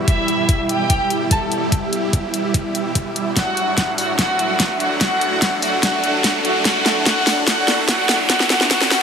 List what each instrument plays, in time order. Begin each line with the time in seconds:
Already playing: supersaw synth B2 G3 E4, ambient pad G3 E4 E5, riser
0.08 violin section E4 E5, kick, closed hi-hat
0.28 closed hi-hat
0.49 kick, closed hi-hat
0.69 violin section G4 G5, closed hi-hat
0.90 kick, closed hi-hat
1.10 closed hi-hat
1.31 violin section A4 A5, kick, closed hi-hat
1.52 closed hi-hat
1.72 kick, closed hi-hat
1.93 closed hi-hat
2.13 kick, closed hi-hat
2.34 closed hi-hat
2.54 kick, closed hi-hat
2.75 closed hi-hat
2.95 kick, closed hi-hat
3.16 closed hi-hat
3.36 supersaw synth A2 F#3 D4 F#4, ambient pad D4, violin section F#4 F#5, kick, snare, closed hi-hat
3.57 ambient pad A4, closed hi-hat
3.78 kick, snare, closed hi-hat
3.98 violin section F#4 F#5, open hi-hat
4.19 violin section F#4 F#5, kick, snare, closed hi-hat
4.39 closed hi-hat
4.60 kick, snare, closed hi-hat
4.80 violin section F#4 F#5, closed hi-hat
5.01 violin section F#4 F#5, kick, snare, closed hi-hat
5.21 closed hi-hat
5.42 kick, snare, closed hi-hat
5.62 violin section F#4 F#5, open hi-hat
5.83 violin section F#4 F#5, kick, snare, closed hi-hat
6.04 closed hi-hat
6.24 kick, snare, closed hi-hat
6.45 violin section F#4 F#5, closed hi-hat
6.65 violin section F#4 F#5, kick, snare, closed hi-hat
6.86 snare, closed hi-hat
7.06 violin section F#4 F#5, kick, snare, closed hi-hat
7.27 snare, open hi-hat
7.47 violin section F#4 F#5, kick, snare, closed hi-hat
7.68 snare, closed hi-hat
7.89 violin section F#4 F#5, kick, snare, closed hi-hat
8.09 snare, closed hi-hat
8.30 violin section F#4 F#5, kick, snare, closed hi-hat
8.40 snare
8.50 violin section F#4 F#5, snare, closed hi-hat
8.61 snare
8.71 violin section F#4 F#5, kick, snare, closed hi-hat
8.81 snare
8.91 violin section F#4 F#5, snare, open hi-hat